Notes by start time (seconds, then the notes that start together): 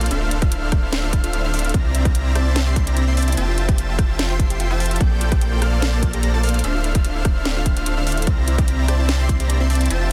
Already playing: impact
0.01 F4, closed hi-hat
0.06 closed hi-hat
0.11 D1 D3 C4 D4 E4 F4 A4 C5 E5 F5 F6, closed hi-hat
0.22 F4
0.31 E4, closed hi-hat
0.42 D4 F4 A4 C5 E5 F5 F6, kick, closed hi-hat
0.52 E4, closed hi-hat
0.63 E4
0.72 D4 A4 C5 D5 E5 F5 F6, kick, cross-stick, closed hi-hat
0.83 E4
0.93 C4, snare, closed hi-hat
1.03 D4 F4 A4 C5 E5 F5 F6
1.13 E4, kick, closed hi-hat
1.24 D4 F4 A4 C5 E5 F5 F6, closed hi-hat
1.33 E4, closed hi-hat
1.44 D4 E4 A4 C5 E5 F5 F6
1.54 D4 A4 C5 D5 E5 F5 F6, open hi-hat
1.59 closed hi-hat
1.65 E4, closed hi-hat
1.69 closed hi-hat
1.74 C2 C3 A#3 C4 D4 E4 C5 D5 E5 A#5 A#6, kick, closed hi-hat
1.85 G4
1.95 E4, closed hi-hat
2.05 C4 G4 C5 D5 E5 A#5 A#6, kick, closed hi-hat
2.15 E4, closed hi-hat
2.26 E4
2.35 C4 C5 D5 E5 A5 A6, cross-stick, closed hi-hat
2.46 E4
2.56 C4, snare, closed hi-hat
2.67 C4 G4 C5 D5 E5 C6 C7
2.76 E4, kick, closed hi-hat
2.87 C4 G4 C5 D5 E5 A#5 A#6, closed hi-hat
2.97 E4, closed hi-hat
3.07 C4 E4 C5 D5 E5 C6 C7
3.17 C4 C5 D5 E5 A5 A6, open hi-hat
3.22 closed hi-hat
3.28 E4, closed hi-hat
3.32 closed hi-hat
3.37 F1 F3 C4 E4 F4 G4 A4 C5 E5 G5 A5 A6, closed hi-hat
3.48 G4
3.58 F4, closed hi-hat
3.69 F4 G4 C5 E5 G5 A5, kick, closed hi-hat
3.78 F4, closed hi-hat
3.89 F4
3.99 F4 C5 E5 G5 A5 A6, kick, cross-stick, closed hi-hat
4.09 F4
4.19 C4, snare, closed hi-hat
4.30 F4 G4 C5 E5 G5 C6 C7
4.39 F4 C5 E5 G5 C6 C7, kick, closed hi-hat
4.50 G4, closed hi-hat
4.60 F4, closed hi-hat
4.71 F4 C5 E5 G5 A5 A6
4.80 E5, open hi-hat
4.86 closed hi-hat
4.91 F4, closed hi-hat
4.96 closed hi-hat
5.01 A#1 A3 A#3 C4 D4 A4 C5 D5 G5 G6, kick, closed hi-hat
5.11 G4
5.21 F4, closed hi-hat
5.32 A#3 G4 A4 C5 D5 G5 G6, kick, closed hi-hat
5.41 G4, closed hi-hat
5.52 F4
5.62 A#3 A4 C5 D5 F5 F6, cross-stick, closed hi-hat
5.73 F4
5.82 C4, snare, closed hi-hat
5.93 A#3 G4 A4 C5 D5 A5 A6
6.03 F4, kick, closed hi-hat
6.13 A#3 G4 A4 C5 D5 A#5 A#6, closed hi-hat
6.23 G4, closed hi-hat
6.34 A#3 F4 A4 C5 D5 A5 A6
6.43 A#3 A4 C5 D5 F5 F6, open hi-hat
6.49 closed hi-hat
6.54 F4, closed hi-hat
6.59 closed hi-hat
6.64 D1 D3 C4 D4 E4 F4 A4 C5 E5 F5 F6, closed hi-hat
6.75 F4
6.84 E4, closed hi-hat
6.95 D4 F4 A4 C5 E5 F5 F6, kick, closed hi-hat
7.05 F4, closed hi-hat
7.16 E4
7.25 D4 A4 C5 D5 E5 F5 F6, kick, cross-stick, closed hi-hat
7.36 E4
7.45 C4, snare, closed hi-hat
7.56 D4 F4 A4 C5 E5 F5 F6
7.66 E4, kick, closed hi-hat
7.77 D4 F4 A4 C5 E5 F5 F6, closed hi-hat
7.86 F4, closed hi-hat
7.97 D4 E4 A4 C5 E5 F5 F6
8.06 D4 A4 C5 D5 E5 F5 F6, open hi-hat
8.12 closed hi-hat
8.17 E4, closed hi-hat
8.22 closed hi-hat
8.27 C2 C3 A#3 C4 D4 C5 D5 E5 A#5 A#6, kick, closed hi-hat
8.38 G4
8.48 E4, closed hi-hat
8.58 C4 G4 C5 D5 E5 A#5 A#6, kick, closed hi-hat
8.68 G4, closed hi-hat
8.79 E4
8.88 C4 C5 D5 E5 A5 A6, cross-stick, closed hi-hat
8.99 E4
9.09 C4, snare, closed hi-hat
9.19 C4 G4 C5 D5 E5 C6 C7
9.29 E4, kick, closed hi-hat
9.40 C4 G4 C5 D5 E5 A#5 A#6, closed hi-hat
9.50 G4, closed hi-hat
9.60 C4 E4 C5 D5 E5 C6 C7
9.70 C4 C5 D5 E5 A5 A6, open hi-hat
9.75 closed hi-hat
9.81 E4, closed hi-hat
9.86 closed hi-hat
9.90 F1 F3 C4 E4 F4 G4 A4 C5 E5 G5 A5 A6, closed hi-hat
10.01 G4